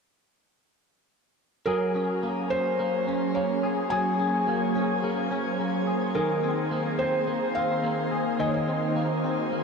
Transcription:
1.66 F#3 A#3 C#4 G#4 A#4
1.95 C#4
2.23 A#3
2.50 C#4 C5
2.79 A#3
3.07 C#4
3.35 A#3 C#5
3.63 G#4
3.90 F#3 G#4 C5 G#5
4.20 C#4
4.47 A#3
4.75 C#4
5.03 A#3
5.31 C#4
5.59 A#3
5.87 G#4
6.15 D#3 A#3 G#4 A#4
6.43 C4
6.71 A#3
6.99 C4 C5
7.27 A#3
7.55 C4 F5
7.83 A#3
8.11 G#4
8.40 D#3 F#4 G#4 D#5
8.46 C#5
8.54 D#5
8.67 C4
8.96 A#3
9.24 C4
9.52 A#3

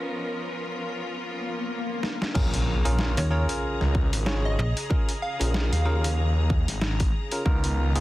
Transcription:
Already playing: F3 B3 C#4 F4 A#4
1.07 swell
2.03 snare
2.22 snare
2.34 A#1 C#3 C#4 F4 G#4 A#4 A#5, kick, crash, impact
2.54 closed hi-hat
2.85 A#1 C#4 F4 G#4 A#4, closed hi-hat
2.99 snare
3.17 D#2 C#5, snare, closed hi-hat
3.31 C#4 F4 G#4 A#4 C#5
3.49 closed hi-hat
3.81 C#2, snare
3.95 kick
4.13 G#1, closed hi-hat
4.26 C#4 F4 G#4 C#5, snare
4.45 D#5
4.59 A#1 D#5
4.77 closed hi-hat
4.90 C#4 F4 G#4 A#4, kick
5.09 closed hi-hat
5.22 F5
5.40 A#1 C#4 F4 G#4 A#4, closed hi-hat
5.54 snare
5.72 D#2 F5, snare, closed hi-hat
5.85 C#4 F4 G#4 A#4
6.04 closed hi-hat
6.50 kick
6.68 G#1, snare, closed hi-hat
6.82 snare
7.00 kick, closed hi-hat
7.32 C#4 F4 G#4 A#4, closed hi-hat
7.45 C#2 D#3 B3 D#4 F4 A#4, kick
7.64 closed hi-hat
7.96 C#2 B3 D#4 F4 G#4, closed hi-hat

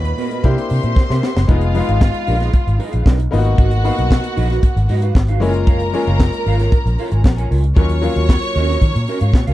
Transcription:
Already playing: D#2 A#2 C#4 D#4 F4 F#4 B4 B5
0.05 muted clean electric guitar stroke, closed hi-hat
0.17 B3 F#4 A#4 D#5, open hi-hat
0.31 B3 F#4 A#4 D#5, closed hi-hat
0.44 C3 A#3 C4 D4 E4 G4 A#4 C5 E5 C6, kick, closed hi-hat
0.57 muted clean electric guitar stroke, closed hi-hat
0.70 C3, muted clean electric guitar stroke, open hi-hat
0.83 A#2 C4 G4 A#4 E5, closed hi-hat
0.96 muted clean electric guitar stroke, kick, snare
1.10 C3 C4 G4 A#4 E5, snare
1.23 C4 G4 A#4 E5, snare
1.36 F#1, muted clean electric guitar stroke, snare
1.48 F1 G#3 B3 D#4 F4 G#4 B4 D#5 F5, kick, closed hi-hat
1.61 closed hi-hat
1.74 G#3 B3 D#4 F4 G#4 B4 F5, open hi-hat
1.88 G#1 D#4 G#4 B4 D#5, closed hi-hat
2.01 muted clean electric guitar stroke, kick, snare, clap
2.14 muted clean electric guitar stroke, closed hi-hat
2.27 A#1 D#4 G#4 B4 D#5, open hi-hat
2.39 D#4 G#4 B4 D#5, snare, closed hi-hat
2.53 muted clean electric guitar stroke, kick, closed hi-hat
2.66 G#1, muted clean electric guitar stroke, closed hi-hat
2.79 D#4 G#4 B4 D#5, open hi-hat
2.91 A#1 D#4 G#4 B4 F5, closed hi-hat
3.05 B1 D#4 G#4 B4 D#5, kick, snare, clap
3.19 muted clean electric guitar stroke, closed hi-hat
3.31 G#1 A#3 B3 D#4 F4 F#4 F#5, open hi-hat
3.38 F#4
3.45 D#4 F#4 B4 D#5, closed hi-hat
3.57 G#1 D#4 F#4 B4 D#5, kick, closed hi-hat
3.71 closed hi-hat
3.84 A#3 B3 D#4 F#4 B4 F5, open hi-hat
3.97 B1 D#4 F#4 B4 D#5, closed hi-hat
4.10 muted clean electric guitar stroke, kick, snare, clap
4.23 muted clean electric guitar stroke, closed hi-hat
4.36 A#1 D#4 F#4 B4 D#5, open hi-hat
4.50 D#4 F#4 B4, snare, closed hi-hat
4.62 muted clean electric guitar stroke, kick, closed hi-hat
4.76 G#1, muted clean electric guitar stroke, closed hi-hat
4.89 G#2 D#4 F#4 B4 D#5, open hi-hat
5.02 D#4 F#4 B4 F5, closed hi-hat
5.15 G#1, muted clean electric guitar stroke, kick, snare, clap
5.28 D#4 F#4 B4 F5, closed hi-hat
5.40 F#1 G#3 A#3 C#4 E4 F4 A#4 C#5 G#5 A#5, open hi-hat
5.48 F4
5.54 muted clean electric guitar stroke, closed hi-hat
5.67 F4 A#4 C#5 F5, kick, closed hi-hat
5.80 closed hi-hat
5.93 G#3 A#3 C#4 F4 A#4 C#5 G#5, open hi-hat
6.07 F#1 F4 A#4 C#5 F5, closed hi-hat
6.20 muted clean electric guitar stroke, kick, snare, clap
6.33 muted clean electric guitar stroke, closed hi-hat
6.46 G#1 F4 A#4 C#5 F5, open hi-hat
6.59 F4 A#4 C#5, snare, closed hi-hat
6.72 muted clean electric guitar stroke, kick, closed hi-hat
6.85 A#1, muted clean electric guitar stroke, closed hi-hat
6.99 F4 A#4 C#5 F5, open hi-hat
7.11 G#1 F4 A#4 C#5 G#5, closed hi-hat
7.24 A#1, muted clean electric guitar stroke, kick, snare, clap
7.37 F4 A#4 C#5 G#5, closed hi-hat
7.50 C#2 F4 A#4 C#5 G#5, open hi-hat
7.63 muted clean electric guitar stroke, closed hi-hat
7.76 D#2 F#3 A#3 C#4 F4 F#4 A#4 C#5 D#5 C#6, kick, closed hi-hat
7.89 closed hi-hat
8.02 F#3 A#3 C#4 F4 F#4 A#4 F5, open hi-hat
8.16 D#2 C#4 F#4 A#4 D#5, closed hi-hat
8.29 kick, snare, clap
8.42 muted clean electric guitar stroke, closed hi-hat
8.56 D#2 C#4 F#4 A#4 D#5, open hi-hat
8.68 C#4 F#4 A#4 D#5, snare, closed hi-hat
8.82 D#3, kick, closed hi-hat
8.95 A#2, muted clean electric guitar stroke, closed hi-hat
9.08 C#4 F#4 A#4 D#5, open hi-hat
9.21 G#2 C#4 F#4 A#4 F5, closed hi-hat
9.34 A#2, kick, snare, clap
9.47 C#2 C#4 F#4 A#4 F5, closed hi-hat

